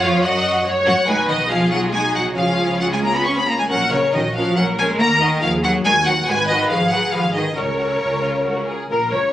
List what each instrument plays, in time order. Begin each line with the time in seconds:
Already playing: viola section C#5
0.01 double bass section F2, cello section F3, violin section F4 F5
0.22 double bass section F#2, cello section F#3, violin section F#4 F#5, viola section D#5
0.66 viola section C#5
0.86 double bass section F#2, cello section F#3, violin section F#4 F#5
1.07 double bass section B1, cello section G#3, violin section D#4 F#4 G#5, viola section B4
1.28 cello section D#3, violin section D#5
1.49 cello section F3, violin section F4 G#4 F5, viola section G#4
1.71 cello section F#3, violin section F#5
1.91 cello section G#3, violin section D#4 G#5, viola section F#4
2.14 cello section F#3, violin section F#5
2.36 double bass section C#2, cello section F3, violin section C#4 G#4 F5, viola section F4
2.81 cello section F#3, violin section F#5
2.92 cello section G#3, violin section G#5
3.03 cello section A#3, violin section A#5
3.15 cello section B3, violin section B5
3.25 cello section C#4, violin section C#6
3.37 cello section B3, violin section B5
3.47 cello section A#3, violin section A#5
3.59 cello section G#3, violin section G#5
3.69 double bass section A#1, cello section F#3, violin section C#4 A#4 F#5, viola section A#4
3.91 cello section C#3, violin section C#4 A#4 C#5
4.14 double bass section A#1, cello section D#3, violin section C#4 A#4 D#5, viola section F#4
4.35 cello section F3, violin section C#4 A#4 F5
4.56 double bass section A#1, cello section F#3, violin section C#4 A#4 F#5, viola section A#4
4.79 cello section G#3, violin section C#4 A#4 G#5
5.00 double bass section D#2, cello section A#3, violin section F#4 A#4 A#5
5.21 cello section D#3, violin section F#4 A#4 D#5
5.42 double bass section D#2, cello section F3, violin section F#4 A#4 F5, viola section G#4
5.63 cello section F#3, violin section F#4 A#4 F#5
5.85 double bass section D#2, cello section G#3, viola section F#4, violin section F#4 A#4 G#5
6.06 cello section F#3, violin section F#4 A#4 F#5
6.27 double bass section G#1, cello section G#3, violin section F#4 B4 G#5, viola section B4
6.48 cello section D#3, violin section F#4 B4 D#5
6.69 double bass section G#1, cello section F3, violin section F#4 B4 F5, viola section G#4
6.91 cello section F#3, violin section F#4 B4 F#5
7.12 double bass section G#1, cello section F3, violin section F#4 B4 F5
7.34 cello section D#3, violin section F#4 B4 D#5
7.56 double bass section C#2, cello section C#3, violin section F#4 A#4 C#5, viola section A#4
7.79 violin section F#4 A#4
8.01 double bass section C#2, violin section A#4
8.23 violin section F4
8.46 double bass section C#2, violin section F#4
8.67 violin section G#4
8.90 double bass section A#1, cello section A#2, violin section A#4, viola section A#4
9.13 double bass section C#2, cello section C#3, violin section C#5, viola section C#5